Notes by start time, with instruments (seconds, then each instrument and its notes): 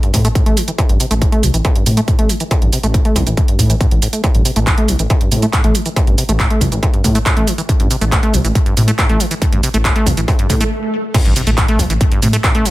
0.03 acid bass G2, closed hi-hat
0.14 detuned saw bass A2, acid bass C3, kick, open hi-hat, shaker
0.25 acid bass A3, closed hi-hat, shaker
0.35 acid bass A2, kick, closed hi-hat, shaker
0.46 detuned saw bass A1, acid bass A3, closed hi-hat
0.57 acid bass E3, open hi-hat, shaker
0.68 acid bass E3, closed hi-hat, shaker
0.78 acid bass A2, kick, closed hi-hat, shaker
0.89 detuned saw bass A1, acid bass G2, closed hi-hat
1.00 acid bass C3, open hi-hat, shaker
1.11 detuned saw bass A1, acid bass A3, closed hi-hat, shaker
1.22 acid bass A2, kick, closed hi-hat, shaker
1.32 acid bass A3, closed hi-hat
1.43 detuned saw bass C2, acid bass E3, open hi-hat, shaker
1.54 detuned saw bass A1, acid bass E3, closed hi-hat, shaker
1.65 acid bass A2, kick, closed hi-hat, shaker
1.76 acid bass G2, closed hi-hat
1.86 detuned saw bass A2, acid bass C3, open hi-hat, shaker
1.97 acid bass A3, closed hi-hat, shaker
2.08 acid bass A2, kick, closed hi-hat, shaker
2.19 detuned saw bass A1, acid bass A3, closed hi-hat
2.29 acid bass E3, open hi-hat, shaker
2.40 acid bass E3, closed hi-hat, shaker
2.51 acid bass A2, kick, closed hi-hat, shaker
2.62 detuned saw bass A1, acid bass G2, closed hi-hat
2.73 acid bass C3, open hi-hat, shaker
2.83 detuned saw bass A1, acid bass A3, closed hi-hat, shaker
2.94 acid bass A2, kick, closed hi-hat, shaker
3.05 acid bass A3, closed hi-hat
3.16 detuned saw bass C2, acid bass E3, kick, open hi-hat, shaker
3.27 detuned saw bass A1, acid bass E3, closed hi-hat, shaker
3.37 acid bass A2, kick, closed hi-hat, shaker
3.48 acid bass G2, closed hi-hat
3.59 detuned saw bass A2, acid bass A2, kick, open hi-hat, shaker
3.70 acid bass E3, closed hi-hat, shaker
3.81 acid bass A2, kick, closed hi-hat, shaker
3.91 detuned saw bass A1, acid bass A2, closed hi-hat
4.02 acid bass A2, open hi-hat, shaker
4.13 acid bass A3, closed hi-hat, shaker
4.24 acid bass A2, kick, closed hi-hat, shaker
4.35 detuned saw bass A1, acid bass G2, closed hi-hat
4.45 acid bass C3, open hi-hat, shaker
4.56 detuned saw bass A1, acid bass A3, closed hi-hat, shaker
4.67 acid bass A2, kick, clap, closed hi-hat, shaker
4.78 acid bass A3, closed hi-hat
4.88 detuned saw bass C2, acid bass E3, open hi-hat, shaker
4.99 detuned saw bass A1, acid bass E3, closed hi-hat, shaker
5.10 acid bass A2, kick, closed hi-hat, shaker
5.21 acid bass G2, closed hi-hat
5.32 detuned saw bass A2, acid bass C3, open hi-hat, shaker
5.42 acid bass A3, closed hi-hat, shaker
5.53 acid bass A2, kick, clap, closed hi-hat, shaker
5.64 detuned saw bass A1, acid bass A3, closed hi-hat
5.75 acid bass E3, open hi-hat, shaker
5.86 acid bass E3, closed hi-hat, shaker
5.96 acid bass A2, kick, closed hi-hat, shaker
6.07 detuned saw bass A1, acid bass G2, closed hi-hat
6.18 acid bass C3, open hi-hat, shaker
6.29 detuned saw bass A1, acid bass A3, closed hi-hat, shaker
6.40 acid bass A2, kick, clap, closed hi-hat, shaker
6.50 acid bass A3, closed hi-hat
6.61 detuned saw bass C2, acid bass E3, kick, open hi-hat, shaker
6.72 detuned saw bass A1, acid bass E3, closed hi-hat, shaker
6.83 acid bass A2, kick, closed hi-hat, shaker
6.94 acid bass G2, closed hi-hat
7.04 detuned saw bass A2, acid bass C3, kick, open hi-hat, shaker
7.15 acid bass A3, closed hi-hat, shaker
7.26 acid bass A2, kick, clap, closed hi-hat, shaker
7.37 detuned saw bass A1, acid bass A3, closed hi-hat
7.47 acid bass E3, open hi-hat, shaker
7.58 acid bass E3, closed hi-hat, shaker
7.69 acid bass A2, kick, closed hi-hat, shaker
7.80 detuned saw bass A1, acid bass G2, closed hi-hat
7.91 acid bass C3, open hi-hat, shaker
8.01 detuned saw bass A1, acid bass A3, closed hi-hat, shaker
8.12 acid bass A2, kick, clap, closed hi-hat, shaker
8.23 acid bass A3, closed hi-hat
8.34 detuned saw bass C2, acid bass E3, open hi-hat, shaker
8.45 detuned saw bass A1, acid bass E3, closed hi-hat, shaker
8.55 acid bass A2, kick, closed hi-hat, shaker
8.66 acid bass G2, closed hi-hat
8.77 detuned saw bass A2, acid bass C3, open hi-hat, shaker
8.88 acid bass A3, closed hi-hat, shaker
8.98 acid bass A2, kick, clap, closed hi-hat, shaker
9.09 detuned saw bass A1, acid bass A3, closed hi-hat
9.20 acid bass E3, open hi-hat, shaker
9.31 acid bass E3, closed hi-hat, shaker
9.42 acid bass A2, kick, closed hi-hat, shaker
9.52 detuned saw bass A1, acid bass G2, closed hi-hat
9.63 acid bass C3, open hi-hat, shaker
9.74 detuned saw bass A1, acid bass A3, closed hi-hat, shaker
9.85 acid bass A2, kick, clap, closed hi-hat, shaker
9.96 acid bass A3, closed hi-hat
10.06 detuned saw bass C2, acid bass E3, kick, open hi-hat, shaker
10.17 detuned saw bass A1, acid bass E3, closed hi-hat, shaker
10.28 acid bass A2, kick, open hi-hat, swell, shaker
10.39 acid bass G2, closed hi-hat
10.50 detuned saw bass A2, acid bass C3, kick, open hi-hat, shaker
10.61 acid bass A3, closed hi-hat, shaker
11.14 acid bass A2, kick, closed hi-hat, crash, impact, shaker
11.25 detuned saw bass A1, acid bass G2, closed hi-hat
11.36 acid bass C3, open hi-hat, shaker
11.47 detuned saw bass A1, acid bass A3, closed hi-hat, shaker
11.58 acid bass A2, kick, clap, closed hi-hat, shaker
11.68 acid bass A3, closed hi-hat
11.79 detuned saw bass C2, acid bass E3, kick, open hi-hat, shaker
11.90 detuned saw bass A1, acid bass E3, closed hi-hat, shaker
12.01 acid bass A2, kick, closed hi-hat, shaker
12.12 acid bass G2, closed hi-hat
12.22 detuned saw bass A2, acid bass C3, open hi-hat, shaker
12.33 acid bass A3, closed hi-hat, shaker
12.44 acid bass A2, kick, clap, closed hi-hat, shaker
12.55 detuned saw bass A1, acid bass A3, closed hi-hat
12.66 acid bass E3, open hi-hat, shaker